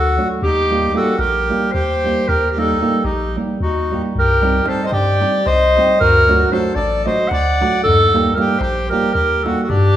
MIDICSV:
0, 0, Header, 1, 6, 480
1, 0, Start_track
1, 0, Tempo, 533808
1, 383, Time_signature, 7, 3, 24, 8
1, 4700, Tempo, 524476
1, 9036, End_track
2, 0, Start_track
2, 0, Title_t, "Clarinet"
2, 0, Program_c, 0, 71
2, 0, Note_on_c, 0, 69, 96
2, 239, Note_off_c, 0, 69, 0
2, 383, Note_on_c, 0, 67, 117
2, 864, Note_on_c, 0, 69, 103
2, 878, Note_off_c, 0, 67, 0
2, 1055, Note_off_c, 0, 69, 0
2, 1060, Note_on_c, 0, 70, 93
2, 1539, Note_on_c, 0, 72, 109
2, 1552, Note_off_c, 0, 70, 0
2, 2050, Note_on_c, 0, 70, 123
2, 2063, Note_off_c, 0, 72, 0
2, 2249, Note_off_c, 0, 70, 0
2, 2249, Note_on_c, 0, 70, 69
2, 2325, Note_on_c, 0, 69, 94
2, 2339, Note_off_c, 0, 70, 0
2, 2736, Note_on_c, 0, 67, 80
2, 2749, Note_off_c, 0, 69, 0
2, 3020, Note_off_c, 0, 67, 0
2, 3247, Note_on_c, 0, 66, 90
2, 3607, Note_off_c, 0, 66, 0
2, 3765, Note_on_c, 0, 70, 117
2, 4207, Note_on_c, 0, 72, 93
2, 4221, Note_off_c, 0, 70, 0
2, 4342, Note_off_c, 0, 72, 0
2, 4347, Note_on_c, 0, 75, 77
2, 4434, Note_on_c, 0, 74, 105
2, 4448, Note_off_c, 0, 75, 0
2, 4919, Note_on_c, 0, 75, 115
2, 4933, Note_off_c, 0, 74, 0
2, 5404, Note_off_c, 0, 75, 0
2, 5410, Note_on_c, 0, 70, 127
2, 5884, Note_on_c, 0, 72, 97
2, 5898, Note_off_c, 0, 70, 0
2, 6090, Note_on_c, 0, 74, 90
2, 6104, Note_off_c, 0, 72, 0
2, 6355, Note_off_c, 0, 74, 0
2, 6360, Note_on_c, 0, 75, 96
2, 6578, Note_on_c, 0, 78, 114
2, 6592, Note_off_c, 0, 75, 0
2, 7080, Note_off_c, 0, 78, 0
2, 7086, Note_on_c, 0, 69, 127
2, 7555, Note_on_c, 0, 70, 96
2, 7568, Note_off_c, 0, 69, 0
2, 7771, Note_on_c, 0, 72, 99
2, 7784, Note_off_c, 0, 70, 0
2, 8047, Note_off_c, 0, 72, 0
2, 8053, Note_on_c, 0, 70, 90
2, 8263, Note_off_c, 0, 70, 0
2, 8269, Note_on_c, 0, 70, 102
2, 8548, Note_on_c, 0, 69, 83
2, 8561, Note_off_c, 0, 70, 0
2, 8714, Note_off_c, 0, 69, 0
2, 8714, Note_on_c, 0, 69, 76
2, 8780, Note_on_c, 0, 67, 127
2, 8793, Note_off_c, 0, 69, 0
2, 9036, Note_off_c, 0, 67, 0
2, 9036, End_track
3, 0, Start_track
3, 0, Title_t, "Accordion"
3, 0, Program_c, 1, 21
3, 0, Note_on_c, 1, 66, 91
3, 253, Note_off_c, 1, 66, 0
3, 405, Note_on_c, 1, 63, 76
3, 831, Note_off_c, 1, 63, 0
3, 862, Note_on_c, 1, 66, 88
3, 1072, Note_off_c, 1, 66, 0
3, 1075, Note_on_c, 1, 67, 83
3, 1538, Note_off_c, 1, 67, 0
3, 1566, Note_on_c, 1, 67, 83
3, 2035, Note_off_c, 1, 67, 0
3, 2048, Note_on_c, 1, 67, 72
3, 2244, Note_off_c, 1, 67, 0
3, 2257, Note_on_c, 1, 67, 49
3, 2317, Note_on_c, 1, 63, 87
3, 2322, Note_off_c, 1, 67, 0
3, 2727, Note_off_c, 1, 63, 0
3, 2741, Note_on_c, 1, 63, 73
3, 3022, Note_off_c, 1, 63, 0
3, 3259, Note_on_c, 1, 63, 71
3, 3614, Note_off_c, 1, 63, 0
3, 3761, Note_on_c, 1, 67, 83
3, 4184, Note_off_c, 1, 67, 0
3, 4213, Note_on_c, 1, 69, 79
3, 4368, Note_off_c, 1, 69, 0
3, 4368, Note_on_c, 1, 72, 70
3, 4418, Note_off_c, 1, 72, 0
3, 4422, Note_on_c, 1, 67, 97
3, 4915, Note_on_c, 1, 72, 100
3, 4921, Note_off_c, 1, 67, 0
3, 5421, Note_off_c, 1, 72, 0
3, 5429, Note_on_c, 1, 66, 79
3, 5862, Note_off_c, 1, 66, 0
3, 5893, Note_on_c, 1, 69, 84
3, 6079, Note_off_c, 1, 69, 0
3, 6093, Note_on_c, 1, 69, 81
3, 6378, Note_off_c, 1, 69, 0
3, 6383, Note_on_c, 1, 72, 86
3, 6591, Note_off_c, 1, 72, 0
3, 6625, Note_on_c, 1, 74, 95
3, 7116, Note_off_c, 1, 74, 0
3, 7122, Note_on_c, 1, 63, 67
3, 7548, Note_off_c, 1, 63, 0
3, 7607, Note_on_c, 1, 67, 80
3, 7791, Note_off_c, 1, 67, 0
3, 7805, Note_on_c, 1, 67, 83
3, 8055, Note_off_c, 1, 67, 0
3, 8069, Note_on_c, 1, 67, 84
3, 8272, Note_off_c, 1, 67, 0
3, 8287, Note_on_c, 1, 67, 79
3, 8542, Note_off_c, 1, 67, 0
3, 8575, Note_on_c, 1, 66, 74
3, 8716, Note_off_c, 1, 66, 0
3, 8730, Note_on_c, 1, 66, 56
3, 8784, Note_off_c, 1, 66, 0
3, 8787, Note_on_c, 1, 62, 70
3, 9036, Note_off_c, 1, 62, 0
3, 9036, End_track
4, 0, Start_track
4, 0, Title_t, "Nylon-string guitar"
4, 0, Program_c, 2, 24
4, 153, Note_on_c, 2, 54, 55
4, 159, Note_on_c, 2, 57, 43
4, 164, Note_on_c, 2, 62, 49
4, 170, Note_on_c, 2, 66, 61
4, 342, Note_off_c, 2, 54, 0
4, 346, Note_off_c, 2, 57, 0
4, 348, Note_off_c, 2, 62, 0
4, 351, Note_off_c, 2, 66, 0
4, 635, Note_on_c, 2, 55, 63
4, 640, Note_on_c, 2, 58, 54
4, 645, Note_on_c, 2, 63, 64
4, 652, Note_on_c, 2, 67, 73
4, 815, Note_off_c, 2, 55, 0
4, 817, Note_off_c, 2, 58, 0
4, 820, Note_off_c, 2, 63, 0
4, 824, Note_off_c, 2, 67, 0
4, 837, Note_on_c, 2, 55, 62
4, 843, Note_on_c, 2, 58, 60
4, 847, Note_on_c, 2, 63, 67
4, 855, Note_on_c, 2, 67, 65
4, 1024, Note_off_c, 2, 55, 0
4, 1027, Note_off_c, 2, 58, 0
4, 1029, Note_off_c, 2, 63, 0
4, 1032, Note_off_c, 2, 67, 0
4, 1344, Note_on_c, 2, 55, 55
4, 1349, Note_on_c, 2, 58, 50
4, 1353, Note_on_c, 2, 63, 51
4, 1362, Note_on_c, 2, 67, 56
4, 1531, Note_off_c, 2, 55, 0
4, 1532, Note_off_c, 2, 58, 0
4, 1535, Note_off_c, 2, 63, 0
4, 1540, Note_off_c, 2, 67, 0
4, 1835, Note_on_c, 2, 55, 48
4, 1849, Note_on_c, 2, 58, 44
4, 1852, Note_on_c, 2, 63, 49
4, 1855, Note_on_c, 2, 67, 55
4, 2026, Note_off_c, 2, 55, 0
4, 2033, Note_off_c, 2, 58, 0
4, 2034, Note_off_c, 2, 63, 0
4, 2036, Note_off_c, 2, 67, 0
4, 2308, Note_on_c, 2, 55, 65
4, 2311, Note_on_c, 2, 58, 60
4, 2322, Note_on_c, 2, 63, 55
4, 2329, Note_on_c, 2, 67, 73
4, 2493, Note_off_c, 2, 55, 0
4, 2494, Note_off_c, 2, 58, 0
4, 2500, Note_off_c, 2, 63, 0
4, 2503, Note_off_c, 2, 67, 0
4, 2527, Note_on_c, 2, 55, 61
4, 2530, Note_on_c, 2, 58, 58
4, 2536, Note_on_c, 2, 63, 54
4, 2544, Note_on_c, 2, 67, 71
4, 2709, Note_off_c, 2, 55, 0
4, 2711, Note_off_c, 2, 58, 0
4, 2712, Note_off_c, 2, 63, 0
4, 2718, Note_off_c, 2, 67, 0
4, 3025, Note_on_c, 2, 55, 56
4, 3030, Note_on_c, 2, 58, 43
4, 3035, Note_on_c, 2, 63, 55
4, 3039, Note_on_c, 2, 67, 52
4, 3210, Note_off_c, 2, 55, 0
4, 3213, Note_off_c, 2, 58, 0
4, 3215, Note_off_c, 2, 63, 0
4, 3217, Note_off_c, 2, 67, 0
4, 3517, Note_on_c, 2, 55, 51
4, 3523, Note_on_c, 2, 58, 43
4, 3525, Note_on_c, 2, 63, 52
4, 3534, Note_on_c, 2, 67, 57
4, 3706, Note_off_c, 2, 55, 0
4, 3706, Note_off_c, 2, 58, 0
4, 3710, Note_off_c, 2, 63, 0
4, 3711, Note_off_c, 2, 67, 0
4, 3971, Note_on_c, 2, 55, 61
4, 3981, Note_on_c, 2, 60, 55
4, 3987, Note_on_c, 2, 63, 60
4, 3991, Note_on_c, 2, 67, 71
4, 4160, Note_off_c, 2, 55, 0
4, 4165, Note_off_c, 2, 60, 0
4, 4168, Note_off_c, 2, 63, 0
4, 4171, Note_off_c, 2, 67, 0
4, 4185, Note_on_c, 2, 55, 59
4, 4186, Note_on_c, 2, 60, 58
4, 4191, Note_on_c, 2, 63, 55
4, 4202, Note_on_c, 2, 67, 67
4, 4373, Note_off_c, 2, 60, 0
4, 4374, Note_off_c, 2, 55, 0
4, 4377, Note_off_c, 2, 63, 0
4, 4382, Note_off_c, 2, 67, 0
4, 4678, Note_on_c, 2, 55, 63
4, 4684, Note_on_c, 2, 60, 50
4, 4691, Note_on_c, 2, 63, 49
4, 4696, Note_on_c, 2, 67, 61
4, 4873, Note_off_c, 2, 55, 0
4, 4877, Note_off_c, 2, 60, 0
4, 4878, Note_off_c, 2, 63, 0
4, 4882, Note_off_c, 2, 67, 0
4, 5197, Note_on_c, 2, 55, 60
4, 5200, Note_on_c, 2, 60, 54
4, 5207, Note_on_c, 2, 67, 66
4, 5208, Note_on_c, 2, 63, 45
4, 5384, Note_off_c, 2, 55, 0
4, 5386, Note_off_c, 2, 60, 0
4, 5389, Note_off_c, 2, 67, 0
4, 5390, Note_off_c, 2, 63, 0
4, 5658, Note_on_c, 2, 54, 66
4, 5663, Note_on_c, 2, 57, 59
4, 5672, Note_on_c, 2, 62, 65
4, 5678, Note_on_c, 2, 66, 67
4, 5847, Note_off_c, 2, 54, 0
4, 5849, Note_off_c, 2, 57, 0
4, 5853, Note_off_c, 2, 62, 0
4, 5857, Note_off_c, 2, 66, 0
4, 5879, Note_on_c, 2, 54, 69
4, 5886, Note_on_c, 2, 57, 58
4, 5890, Note_on_c, 2, 62, 55
4, 5894, Note_on_c, 2, 66, 82
4, 6065, Note_off_c, 2, 54, 0
4, 6067, Note_off_c, 2, 57, 0
4, 6070, Note_off_c, 2, 62, 0
4, 6072, Note_off_c, 2, 66, 0
4, 6366, Note_on_c, 2, 54, 59
4, 6372, Note_on_c, 2, 57, 59
4, 6373, Note_on_c, 2, 62, 52
4, 6381, Note_on_c, 2, 66, 64
4, 6561, Note_off_c, 2, 54, 0
4, 6564, Note_off_c, 2, 57, 0
4, 6564, Note_off_c, 2, 62, 0
4, 6569, Note_off_c, 2, 66, 0
4, 6878, Note_on_c, 2, 54, 57
4, 6883, Note_on_c, 2, 57, 55
4, 6883, Note_on_c, 2, 62, 56
4, 6892, Note_on_c, 2, 66, 55
4, 7067, Note_off_c, 2, 54, 0
4, 7069, Note_off_c, 2, 57, 0
4, 7069, Note_off_c, 2, 62, 0
4, 7074, Note_off_c, 2, 66, 0
4, 7359, Note_on_c, 2, 55, 64
4, 7363, Note_on_c, 2, 58, 64
4, 7368, Note_on_c, 2, 63, 54
4, 7373, Note_on_c, 2, 67, 71
4, 7537, Note_off_c, 2, 55, 0
4, 7539, Note_off_c, 2, 58, 0
4, 7542, Note_off_c, 2, 63, 0
4, 7543, Note_off_c, 2, 67, 0
4, 7574, Note_on_c, 2, 55, 67
4, 7588, Note_on_c, 2, 58, 63
4, 7596, Note_on_c, 2, 63, 59
4, 7596, Note_on_c, 2, 67, 77
4, 7751, Note_off_c, 2, 55, 0
4, 7759, Note_off_c, 2, 58, 0
4, 7761, Note_off_c, 2, 63, 0
4, 7762, Note_off_c, 2, 67, 0
4, 8079, Note_on_c, 2, 55, 62
4, 8083, Note_on_c, 2, 58, 58
4, 8088, Note_on_c, 2, 63, 55
4, 8089, Note_on_c, 2, 67, 74
4, 8255, Note_off_c, 2, 55, 0
4, 8258, Note_off_c, 2, 58, 0
4, 8259, Note_off_c, 2, 63, 0
4, 8260, Note_off_c, 2, 67, 0
4, 8554, Note_on_c, 2, 55, 51
4, 8566, Note_on_c, 2, 58, 57
4, 8567, Note_on_c, 2, 63, 49
4, 8576, Note_on_c, 2, 67, 62
4, 8741, Note_off_c, 2, 55, 0
4, 8746, Note_off_c, 2, 63, 0
4, 8748, Note_off_c, 2, 58, 0
4, 8752, Note_off_c, 2, 67, 0
4, 9036, End_track
5, 0, Start_track
5, 0, Title_t, "Sub bass"
5, 0, Program_c, 3, 38
5, 0, Note_on_c, 3, 38, 94
5, 173, Note_off_c, 3, 38, 0
5, 381, Note_on_c, 3, 39, 104
5, 792, Note_off_c, 3, 39, 0
5, 1068, Note_on_c, 3, 34, 87
5, 1369, Note_off_c, 3, 34, 0
5, 1569, Note_on_c, 3, 39, 90
5, 1869, Note_off_c, 3, 39, 0
5, 2057, Note_on_c, 3, 39, 104
5, 2468, Note_off_c, 3, 39, 0
5, 2738, Note_on_c, 3, 34, 84
5, 3040, Note_off_c, 3, 34, 0
5, 3241, Note_on_c, 3, 39, 97
5, 3541, Note_off_c, 3, 39, 0
5, 3736, Note_on_c, 3, 36, 91
5, 4144, Note_off_c, 3, 36, 0
5, 4426, Note_on_c, 3, 43, 87
5, 4722, Note_off_c, 3, 43, 0
5, 4917, Note_on_c, 3, 36, 91
5, 5220, Note_off_c, 3, 36, 0
5, 5417, Note_on_c, 3, 38, 98
5, 5829, Note_off_c, 3, 38, 0
5, 6104, Note_on_c, 3, 33, 81
5, 6405, Note_off_c, 3, 33, 0
5, 6609, Note_on_c, 3, 38, 81
5, 6909, Note_off_c, 3, 38, 0
5, 7111, Note_on_c, 3, 39, 91
5, 7517, Note_off_c, 3, 39, 0
5, 7793, Note_on_c, 3, 34, 89
5, 8090, Note_off_c, 3, 34, 0
5, 8290, Note_on_c, 3, 39, 84
5, 8586, Note_off_c, 3, 39, 0
5, 8792, Note_on_c, 3, 43, 105
5, 9036, Note_off_c, 3, 43, 0
5, 9036, End_track
6, 0, Start_track
6, 0, Title_t, "Darbuka"
6, 3743, Note_on_c, 9, 64, 78
6, 3833, Note_off_c, 9, 64, 0
6, 3870, Note_on_c, 9, 63, 29
6, 3960, Note_off_c, 9, 63, 0
6, 3979, Note_on_c, 9, 63, 83
6, 4069, Note_off_c, 9, 63, 0
6, 4091, Note_on_c, 9, 63, 31
6, 4181, Note_off_c, 9, 63, 0
6, 4187, Note_on_c, 9, 63, 84
6, 4277, Note_off_c, 9, 63, 0
6, 4298, Note_on_c, 9, 63, 26
6, 4388, Note_off_c, 9, 63, 0
6, 4400, Note_on_c, 9, 63, 81
6, 4490, Note_off_c, 9, 63, 0
6, 4552, Note_on_c, 9, 63, 29
6, 4642, Note_off_c, 9, 63, 0
6, 4690, Note_on_c, 9, 63, 66
6, 4781, Note_off_c, 9, 63, 0
6, 4909, Note_on_c, 9, 63, 67
6, 5000, Note_off_c, 9, 63, 0
6, 5059, Note_on_c, 9, 63, 25
6, 5150, Note_off_c, 9, 63, 0
6, 5194, Note_on_c, 9, 63, 74
6, 5285, Note_off_c, 9, 63, 0
6, 5424, Note_on_c, 9, 64, 98
6, 5515, Note_off_c, 9, 64, 0
6, 5556, Note_on_c, 9, 63, 28
6, 5648, Note_off_c, 9, 63, 0
6, 5673, Note_on_c, 9, 63, 86
6, 5765, Note_off_c, 9, 63, 0
6, 5791, Note_on_c, 9, 63, 30
6, 5882, Note_off_c, 9, 63, 0
6, 5895, Note_on_c, 9, 63, 76
6, 5987, Note_off_c, 9, 63, 0
6, 6010, Note_on_c, 9, 63, 30
6, 6101, Note_off_c, 9, 63, 0
6, 6122, Note_on_c, 9, 63, 79
6, 6213, Note_off_c, 9, 63, 0
6, 6256, Note_on_c, 9, 63, 31
6, 6347, Note_off_c, 9, 63, 0
6, 6391, Note_on_c, 9, 63, 69
6, 6482, Note_off_c, 9, 63, 0
6, 6504, Note_on_c, 9, 63, 30
6, 6595, Note_off_c, 9, 63, 0
6, 6607, Note_on_c, 9, 63, 79
6, 6698, Note_off_c, 9, 63, 0
6, 6749, Note_on_c, 9, 63, 22
6, 6841, Note_off_c, 9, 63, 0
6, 6887, Note_on_c, 9, 63, 83
6, 6978, Note_off_c, 9, 63, 0
6, 7104, Note_on_c, 9, 64, 93
6, 7196, Note_off_c, 9, 64, 0
6, 7379, Note_on_c, 9, 63, 88
6, 7471, Note_off_c, 9, 63, 0
6, 7482, Note_on_c, 9, 63, 28
6, 7574, Note_off_c, 9, 63, 0
6, 7585, Note_on_c, 9, 63, 72
6, 7677, Note_off_c, 9, 63, 0
6, 7687, Note_on_c, 9, 63, 26
6, 7778, Note_off_c, 9, 63, 0
6, 7795, Note_on_c, 9, 63, 86
6, 7887, Note_off_c, 9, 63, 0
6, 7928, Note_on_c, 9, 63, 29
6, 8019, Note_off_c, 9, 63, 0
6, 8071, Note_on_c, 9, 63, 65
6, 8163, Note_off_c, 9, 63, 0
6, 8175, Note_on_c, 9, 63, 22
6, 8267, Note_off_c, 9, 63, 0
6, 8286, Note_on_c, 9, 63, 65
6, 8377, Note_off_c, 9, 63, 0
6, 8574, Note_on_c, 9, 63, 78
6, 8665, Note_off_c, 9, 63, 0
6, 8792, Note_on_c, 9, 64, 93
6, 8883, Note_off_c, 9, 64, 0
6, 8919, Note_on_c, 9, 63, 26
6, 9010, Note_off_c, 9, 63, 0
6, 9036, End_track
0, 0, End_of_file